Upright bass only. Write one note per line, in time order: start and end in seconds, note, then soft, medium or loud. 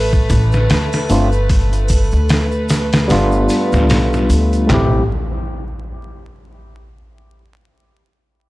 0.00 0.27 A1 medium
0.30 0.66 A1 loud
0.70 1.06 D2 medium
1.10 2.08 G1 medium
2.13 3.06 D2 medium
3.10 3.46 G1 medium
3.73 3.90 D2 loud
3.90 4.25 B1 medium
4.30 4.66 D2 loud
4.69 5.07 A1 loud